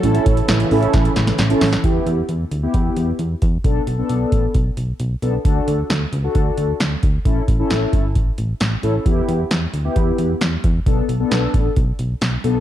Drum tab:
HH |xxxxxxoxxxxxxxox|x-x-x-x-x-x-x-x-|x-x-x-x-x-x-x-x-|x-x-x-x-x-x-x-x-|
SD |----o---o-ooo-oo|----------------|----------------|----o-------o---|
BD |--o-----o-------|o-------o-----o-|o-----o-o-------|o-------o-----o-|

HH |x-x-x-x-x-x-x-x-|x-x-x-x-x-x-x-x-|x-x-x-x-x-x-x-x-|
SD |----o-------o---|----o-------o---|----o-------o---|
BD |o-o---o-o-------|o-------o-----o-|o-----o-o-------|